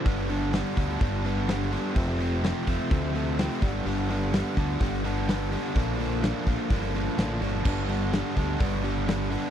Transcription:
<<
  \new Staff \with { instrumentName = "Overdriven electric guitar" } { \clef bass \time 4/4 \key g \mixolydian \tempo 4 = 126 <g, d g b d'>8 <g, d g b d'>8 <g, d g b d'>8 <g, d g b d'>8 <g, d g b d'>8 <g, d g b d'>8 <g, d g b d'>8 <g, d g b d'>8 | <f, c f a c'>8 <f, c f a c'>8 <f, c f a c'>8 <f, c f a c'>8 <f, c f a c'>8 <f, c f a c'>8 <f, c f a c'>8 <g, d g b d'>8 | <g, d g b d'>8 <g, d g b d'>8 <g, d g b d'>8 <g, d g b d'>8 <g, d g b d'>8 <g, d g b d'>8 <g, d g b d'>8 <g, d g b d'>8 | <bes, d f bes d'>8 <bes, d f bes d'>8 <bes, d f bes d'>8 <bes, d f bes d'>8 <bes, d f bes d'>8 <bes, d f bes d'>8 <bes, d f bes d'>8 <bes, d f bes d'>8 |
<g, d g b d'>8 <g, d g b d'>8 <g, d g b d'>8 <g, d g b d'>8 <g, d g b d'>8 <g, d g b d'>8 <g, d g b d'>8 <g, d g b d'>8 | }
  \new Staff \with { instrumentName = "Fingered electric bass" } { \clef bass \time 4/4 \key g \mixolydian g,,4. d,8 g,,2 | f,,4. f,,16 r16 d,4. g,,8 | g,,4. d,8 g,,2 | bes,,4. bes,,16 r16 g,,4 a,,8 g,,8 |
g,,4. d,8 g,,2 | }
  \new DrumStaff \with { instrumentName = "Drums" } \drummode { \time 4/4 <hho bd>8 hho8 <hho sn>8 <hho bd>8 <hho bd>8 hho8 <hho sn>8 hho8 | <hho bd>8 hho8 <hho sn>8 <hho bd>8 <hho bd>8 hho8 <hho sn>8 <hho bd>8 | hho8 hho8 <hho sn>8 <hho bd>8 <hho bd>8 hho8 <hho sn>8 hho8 | <hho bd>8 hho8 <hho sn>8 <hho bd>8 <hho bd>8 hho8 <hho sn>8 hho8 |
<cymc bd>8 hho8 <hho sn>8 <hho bd>8 <hho bd>8 hho8 <hho sn>8 hho8 | }
>>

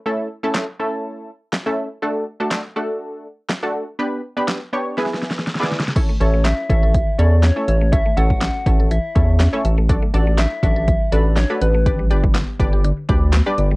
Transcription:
<<
  \new Staff \with { instrumentName = "Soft synth lead" } { \time 4/4 \key a \major \tempo 4 = 122 r1 | r1 | r1 | r8 cis''8 e''8 e''4 d''8 cis''8 cis''8 |
e''8 fis''4. e''4. r8 | r8 d''8 e''8 e''4 d''8 cis''8 b'8~ | b'8 r2. r8 | }
  \new Staff \with { instrumentName = "Synth stab" } { \time 4/4 \key a \major <a cis' e' a'>8 r16 <a cis' e' a'>8 r16 <a cis' e' a'>4 r8. <a cis' e' a'>8 r16 | <a d' fis' a'>8 r16 <a d' fis' a'>8 r16 <a d' fis' a'>4 r8. <a d' fis' a'>8 r16 | <b d' g' b'>8 r16 <b d' g' b'>8 r16 <b d' g' cis''>8 <b e' gis' b'>4 r16 <b e' gis' d''>8 r16 | <cis' e' a' cis''>16 r16 <cis' e' a' cis''>8 r8 <cis' e' a' cis''>8 r8 <cis' e' a' cis''>8 r16 <cis' e' a' cis''>8 r16 |
<cis' e' a' cis''>16 r16 <cis' e' a' cis''>8 r8 <cis' e' a' cis''>8 r8 <cis' e' a' cis''>8 r16 <cis' e' a' cis''>8 r16 | <d' fis' a' d''>16 r16 <d' fis' a' d''>8 r8 <d' fis' a' d''>8 r8 <d' fis' a' b'>8 r16 <d' fis' a' b'>8 r16 | <d' g' b' d''>16 r16 <d' g' b' d''>8 r8 <d' g' b' d''>8 r8 <d' g' b' d''>8 r16 <d' g' b' d''>8 r16 | }
  \new Staff \with { instrumentName = "Synth arpeggio sound" } { \time 4/4 \key a \major r1 | r1 | r1 | e16 a16 a'16 a16 cis'16 r16 e16 a'16 e16 r16 a'16 r16 cis'16 a16 e''16 a16 |
e16 a16 a'16 a16 cis'16 r16 e16 a'16 e16 r16 a'16 r16 cis'16 a16 e''16 a16 | fis16 a16 a'16 a16 d'16 r16 fis16 a'16 fis16 r16 a'16 r16 d'16 a16 fis''16 a16 | d16 g16 g'16 g16 b16 r16 d16 g'16 d16 r16 g'16 r16 b16 g16 d''16 g16 | }
  \new Staff \with { instrumentName = "Analog synth bass" } { \clef bass \time 4/4 \key a \major r1 | r1 | r1 | r8 a,,4 a,,4 e,4 a,,8~ |
a,,8 a,,4 a,,4 e,4 a,,8~ | a,,8 a,,4 a,,4 a,,4 a,,8~ | a,,8 g,,4 g,,4 d,4 g,,8 | }
  \new DrumStaff \with { instrumentName = "Drums" } \drummode { \time 4/4 r4 <hc sn>4 r4 <hc sn>4 | r4 <hc sn>4 r4 <hc sn>4 | r4 <hc sn>4 \tuplet 3/2 { sn16 sn16 sn16 sn16 sn16 sn16 sn16 sn16 sn16 sn16 sn16 sn16 } | <cymc hh bd>8 hh8 <hc hh sn>8 <hh bd>8 <hh bd>8 hh8 <hc hh sn>8 hh8 |
<hh bd>8 hh16 bd16 <hc hh sn>8 <hh bd>8 hh8 <hh bd>8 <hc hh sn>8 hh8 | <hh bd>8 hh8 <hc hh sn>8 <hh bd>8 <hh bd>8 hh8 <hc hh sn>8 hh8 | <hh bd>8 hh16 bd16 <hc hh sn>8 <hh bd>8 hh8 <hh bd>8 <hc hh sn>8 hh8 | }
>>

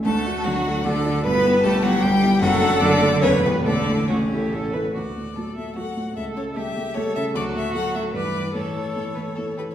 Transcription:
<<
  \new Staff \with { instrumentName = "Violin" } { \time 3/4 \key d \major \tempo 4 = 149 a''4 fis''4 d''4 | b''4 a''8 fis''8 g''4 | fis''4 d''4 cis''8 b'8 | d''4 cis''4. b'16 cis''16 |
d''4. e''8 fis''4 | e''8 cis''8 e''4 cis''8 e''8 | d''8 e''8 fis''8 e''8 d''4 | cis''2~ cis''8 b'16 cis''16 | }
  \new Staff \with { instrumentName = "Viola" } { \time 3/4 \key d \major fis'2 a'4 | b'4 g'2 | a'2 b'4 | a'4 fis'8 g'8 a'8 b'8 |
fis'4 a'4 fis'4 | a'4 g'4 a'4 | fis'2 b'4 | a'2~ a'8 r8 | }
  \new Staff \with { instrumentName = "Violin" } { \time 3/4 \key d \major a'4 fis'4 d'4 | b'4 a'8 fis'8 g'4 | fis'4 d'4 cis'8 b8 | d'4 cis'4. r8 |
r4 a'4 a'4 | r4 a'4 a'4 | a'4 a'4 b'4 | a'4 a'8 b'8 a'8 g'8 | }
  \new Staff \with { instrumentName = "Grand piano" } { \time 3/4 \key d \major <d, d>8 <d' fis' a'>8 <d, d>8 <d' fis' a'>8 <d, d>8 <d' fis' a'>8 | <g,, g,>8 <b e' g'>8 <g,, g,>8 <b e' g'>8 <g,, g,>8 <b e' g'>8 | <fis,, fis,>8 <a d' a'>8 <fis,, fis,>8 <a d' a'>8 <e,, e,>8 <b e' g'>8 | <a,, a,>8 <a e' a'>8 <a,, a,>8 <a e' a'>8 <a,, a,>8 <a e' a'>8 |
d,8 a,8 <a fis' a'>8 a8 <a fis' a'>8 a,8 | cis,8 cis8 <a g' a'>8 a8 <a g' a'>8 cis8 | d,8 a,8 <a fis' a'>8 a8 g,8 e'8 | a,8 e8 <a e' a'>8 a8 <a e' a'>8 e8 | }
  \new Staff \with { instrumentName = "Cello" } { \clef bass \time 3/4 \key d \major a4 fis4 d4 | b4 a8 fis8 g4 | fis4 d4 cis8 b,8 | d4 cis4. r8 |
r4 fis4 fis4 | r4 g4 g4 | fis4 fis4 e4 | e2~ e8 r8 | }
>>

